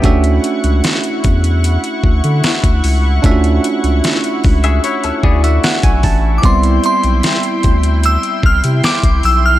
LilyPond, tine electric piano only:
\new Staff \with { instrumentName = "Tine electric piano" } { \time 4/4 \key d \dorian \tempo 4 = 75 << { r1 | r2 r8 d''16 e''16 fis''16 aes''16 a''8 | r1 | } \\ { <a cis' d' fis' e''>1 | <a cis' d' f' fis' e''>1 | <g b c' e' d''>1 | } >> }